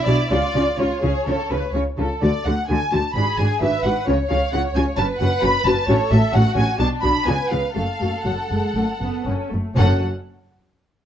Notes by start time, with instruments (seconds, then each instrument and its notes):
Already playing: violin section E4
0.06 double bass section B1, cello section B2, viola section D4 F#4, violin section D5
0.29 double bass section C#2, cello section C#3, viola section C#4 F4, violin section F4 D5
0.54 double bass section C#2, cello section C#3, viola section C#4 F4
0.78 double bass section C#2, cello section C#3, viola section C#4 F4, violin section F4 C#5
1.02 double bass section C#2, cello section C#3, viola section C#4 F4, violin section G#4
1.26 double bass section C#2, cello section C#3, viola section C#4 F4, violin section A4
1.50 double bass section C#2, cello section C#3, viola section C#4 F4, violin section B4
1.74 double bass section C#2, cello section C#3, viola section C#4 F4, violin section C#5
1.98 double bass section C#2, cello section C#3, viola section C#4 F4, violin section A4
2.22 double bass section D2, cello section D3, viola section A3 F#4, violin section D5
2.45 double bass section D2, cello section D3, viola section A3 F#4, violin section F#5
2.69 double bass section D2, cello section D3, viola section A3 F#4, violin section G#5
2.92 double bass section D2, cello section D3, viola section A3 F#4, violin section A5
3.14 double bass section G#1, cello section G#2, viola section D4 F#4, violin section G#4 B5
3.37 double bass section G#1, cello section G#2, viola section D4 F#4, violin section G#5
3.61 double bass section G#1, cello section G#2, viola section D4 F#4, violin section B4 E5
3.84 double bass section G#1, cello section G#2, viola section D4 F#4, violin section F#5
4.07 double bass section C#2, cello section C#3, viola section C#4 F4, violin section C#5
4.29 double bass section C#2, cello section C#3, viola section C#4 F4, violin section F5
4.52 double bass section C#2, cello section C#3, viola section C#4 F4, violin section F#5
4.75 double bass section C#2, cello section C#3, viola section C#4 F4, violin section G#5
4.97 double bass section F#1, cello section F#2, viola section C#4 F#4, violin section B4 A5
5.19 double bass section F#1, cello section F#2, viola section C#4 F#4, violin section F#5
5.42 double bass section F#1, cello section F#2, viola section C#4 F#4, violin section B5
5.65 double bass section F#1, cello section F#2, viola section C#4 F#4, violin section A5
5.88 double bass section A1, cello section A2, viola section C#4 F#4, violin section A4 C#5
6.11 double bass section A1, cello section A2, viola section C#4 F#4, violin section E5
6.33 double bass section A1, cello section A2, viola section C#4 F#4, violin section F#4 F#5
6.55 double bass section A1, cello section A2, viola section C#4 F#4, violin section G#5
6.78 double bass section B1, cello section B2, viola section D4 F#4, violin section D4 A5
7.02 double bass section B1, cello section B2, viola section D4 F#4, violin section B5
7.26 double bass section C#2, cello section C#3, viola section B3 F4, violin section B4 G#5
7.50 double bass section C#2, cello section C#3, viola section B3 F4, violin section F5
7.75 double bass section F#1, cello section F#2, viola section A3 F#4, violin section A4 F5
8.00 double bass section F#1, cello section F#2, viola section A3 F#4
8.25 double bass section F#1, cello section F#2, viola section F#3, violin section F#5
8.50 double bass section F#1, cello section F#2, viola section G#3
8.75 double bass section F#1, cello section F#2, viola section A3
9.01 double bass section F#1, cello section F#2, viola section B3
9.26 double bass section F#1, cello section F#2, viola section C#4
9.52 double bass section F#1, cello section F#2, viola section A3
9.76 double bass section F#1, cello section F#2, viola section F#3 C#4, violin section C#4 A4 F#5